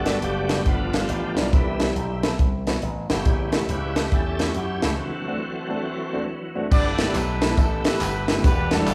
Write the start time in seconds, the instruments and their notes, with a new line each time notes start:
Already playing: slap bass G1, upright piano G2, tonewheel organ G3 A3 B3 D4 F#4 A4
0.06 upright piano G3 B3 D4 F#4, snare, closed hi-hat
0.22 slap bass F#1, tonewheel organ B3 D4 G4, closed hi-hat
0.49 upright piano G3 B3 D4 A4, snare, closed hi-hat
0.66 slap bass G1, upright piano G2, tonewheel organ F3 A3 B3 D4 F4 B4, kick, closed hi-hat
0.93 upright piano G3 B3 D4 F4, snare, closed hi-hat
1.04 tonewheel organ B3 D4 G4
1.09 slap bass A1, closed hi-hat
1.36 slap bass B1, upright piano G3 B3 D4 E4, tonewheel organ F4, snare, closed hi-hat
1.53 slap bass C2, upright piano C3, tonewheel organ D3 E3 G3 B3 E4, kick, closed hi-hat
1.80 upright piano B3 C4 E4 G4, snare, closed hi-hat
1.95 slap bass B1, closed hi-hat
2.23 upright piano B3 C4 E4 A4, snare, closed hi-hat
2.39 slap bass C2, kick, closed hi-hat
2.67 upright piano B3 C4 E4 F#4, snare, closed hi-hat
2.82 slap bass A1, closed hi-hat
3.10 slap bass G1, upright piano B3 C4 E4 A4, tonewheel organ C#4 E4 G4, snare, closed hi-hat
3.25 slap bass A1, upright piano A2, tonewheel organ C#3 G3 B3, kick, closed hi-hat
3.52 upright piano A3 C#4 E4 G4, snare, closed hi-hat
3.69 slap bass C#2, tonewheel organ E4 G4 B4, closed hi-hat
3.96 upright piano A3 C#4 E4 A4, snare, closed hi-hat
4.12 slap bass E2, tonewheel organ C#4 E4 A4, kick, closed hi-hat
4.39 upright piano A3 C#4 E4 F#4, snare, closed hi-hat
4.50 tonewheel organ F#4, closed hi-hat
4.55 slap bass F#2, tonewheel organ C#4 E4 G4
4.82 slap bass C#2, upright piano A3 C#4 E4 A4, snare, closed hi-hat
4.97 upright piano D3, tonewheel organ E3 F#3 A3 C4 F#4
5.28 upright piano A3 C4 D4 F#4
5.69 upright piano A3 C4 D4 A4
6.13 upright piano A3 C4 D4 F#4
6.55 upright piano A3 C4 D4 F#4
6.71 slap bass G1, upright piano G2, tonewheel organ A3 E4 G4 B4, horn section A4 B4 D5, kick, crash, tambourine
6.98 upright piano A3 B3 E4 G4, snare, closed hi-hat, tambourine
7.06 upright piano A3 B3 E4 G4
7.14 slap bass B1, horn section D4 E4 B4, clap, closed hi-hat, tambourine
7.42 upright piano A3 B3 E4 G4, snare, closed hi-hat, tambourine
7.50 upright piano A3 B3 E4 A4
7.57 slap bass A1, horn section D4 E4 A4, kick, closed hi-hat, tambourine
7.85 upright piano A3 B3 E4 G4, horn section D4 E4 B4, snare, closed hi-hat, tambourine
8.00 slap bass G1, clap, closed hi-hat, tambourine
8.28 upright piano A3 B3 E4 G4, snare, closed hi-hat, tambourine
8.37 upright piano A3 B3 E4 G4
8.43 slap bass E1, upright piano E3, tonewheel organ G3 D4 A4 F#5, horn section D4 G4 B4, kick, closed hi-hat, tambourine
8.71 upright piano G3 A3 D4 F#4, horn section D4 F#4 A4, snare, closed hi-hat, tambourine
8.80 upright piano G3 A3 D4 E4
8.87 slap bass F#1, clap, closed hi-hat, tambourine